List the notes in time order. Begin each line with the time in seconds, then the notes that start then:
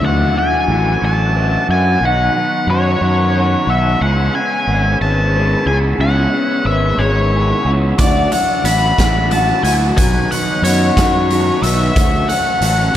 0.02 D2 D3 E3 F#3 A3 D4 E4 F#4 A4 E5
0.06 F#5
0.36 A3 E4 F#4 G#5
0.68 A1 E3 A3 E4 F#4
1.02 A1 A3 E4 F#4 A5
1.35 E3 A3 E4 F#4
1.69 F#2 A3 E4 F#4 G#5
2.01 B1 B2 D#3 F#3 B3 D#4 F#4 B4 F#5
2.05 F#5
2.34 B3 D#4 F#4
2.67 F#2 F#3 B3 D#4 F#4 C#5
3.01 F#2 B3 D#4 F#4
3.35 F#3 B3 D#4 F#4
3.67 B1 B3 D#4 F#4 E5
4.00 C#2 C#3 E3 G#3 B3 C#4 G#4 E5 F#5
4.34 B3 C#4 G#4 G#5
4.67 G#1 E3 B3 C#4 G#4
5.01 G#1 B3 C#4 G#4 A5
5.34 E3 B3 C#4 G#4
5.66 C#2 C#4 G#4 G#5
5.70 B3
5.98 C#2 C#3 E3 B3 C#4 F#5
6.03 G#4
6.33 B3 C#4 G#4
6.65 G#1 E3 B3 C#4 E5
6.69 G#4
6.98 G#1 C#4 G#4 C#5
7.03 B3
7.33 E3 B3 C#4 G#4
7.65 C#2 B3 C#4 G#4
7.98 D2 D3 E3 F#3 A3 D4 E4 F#4 A4 D5, kick, closed hi-hat
8.32 A3 E4 F#4 F#5, closed hi-hat
8.64 A1 E3 A3 E4 B5, closed hi-hat
8.69 F#4
8.98 A1 A3 E4 F#4, kick, snare, closed hi-hat
9.31 E3 A3 E4 F#4 A5, closed hi-hat
9.63 D2 A3 E4 F#4 G#5, closed hi-hat
9.96 B1 B2 D#3 F#3 B3 B4 F#5 G#5, kick, closed hi-hat
10.00 D#4 F#4
10.31 B3 D#4 F#4 F#5, closed hi-hat
10.62 F#2 F#3 B3 D#4 C#5, closed hi-hat
10.66 F#4
10.96 F#2 B3 D#4 F#4, kick, snare, closed hi-hat
11.29 F#3 B3 D#4 F#4, closed hi-hat
11.62 B1 B3 D#4 F#4 E5, closed hi-hat
11.95 D2 D3 F#3 A3 C#4 C#5, kick, closed hi-hat
11.99 F#4
12.29 A3 C#4 F#4 F#5, closed hi-hat
12.61 A1 F#3 A3, closed hi-hat
12.65 C#4 F#4